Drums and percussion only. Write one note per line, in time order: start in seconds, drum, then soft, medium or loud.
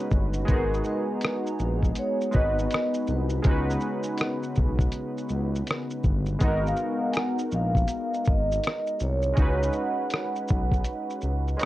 0.11 kick medium
0.11 shaker soft
0.33 shaker soft
0.48 kick loud
0.48 closed hi-hat medium
0.48 shaker medium
0.74 shaker medium
0.84 shaker soft
1.21 cross-stick loud
1.21 closed hi-hat medium
1.21 shaker medium
1.47 shaker soft
1.59 shaker soft
1.83 kick medium
1.83 shaker medium
1.95 closed hi-hat medium
1.95 shaker medium
2.21 shaker soft
2.32 kick loud
2.32 shaker soft
2.59 shaker soft
2.71 cross-stick loud
2.71 closed hi-hat medium
2.71 shaker medium
2.94 shaker soft
3.07 shaker soft
3.29 shaker soft
3.44 kick loud
3.44 closed hi-hat medium
3.44 shaker medium
3.70 shaker soft
3.80 shaker soft
4.03 shaker medium
4.17 cross-stick loud
4.17 closed hi-hat medium
4.17 shaker medium
4.43 shaker soft
4.55 kick loud
4.55 shaker soft
4.79 kick medium
4.79 shaker medium
4.92 closed hi-hat medium
4.92 shaker medium
5.17 shaker soft
5.29 shaker soft
5.55 shaker soft
5.67 cross-stick loud
5.67 closed hi-hat medium
5.67 shaker medium
5.90 shaker soft
6.03 kick medium
6.03 shaker soft
6.26 shaker soft
6.41 kick loud
6.41 closed hi-hat medium
6.41 shaker medium
6.67 shaker soft
6.77 shaker soft
7.14 cross-stick loud
7.14 closed hi-hat medium
7.14 shaker medium
7.39 shaker soft
7.52 shaker soft
7.75 kick medium
7.75 shaker medium
7.88 closed hi-hat medium
7.88 shaker medium
8.14 shaker soft
8.25 kick loud
8.25 shaker soft
8.52 shaker soft
8.63 cross-stick loud
8.63 closed hi-hat medium
8.63 shaker medium
8.86 shaker soft
9.00 shaker soft
9.22 shaker soft
9.37 kick loud
9.37 closed hi-hat medium
9.37 shaker medium
9.63 shaker medium
9.73 shaker medium
10.10 cross-stick loud
10.10 closed hi-hat medium
10.10 shaker medium
10.35 shaker soft
10.48 kick loud
10.48 shaker medium
10.72 kick medium
10.72 shaker medium
10.84 closed hi-hat medium
10.84 shaker medium
11.10 shaker soft
11.21 shaker soft
11.48 shaker soft
11.60 closed hi-hat medium
11.60 shaker medium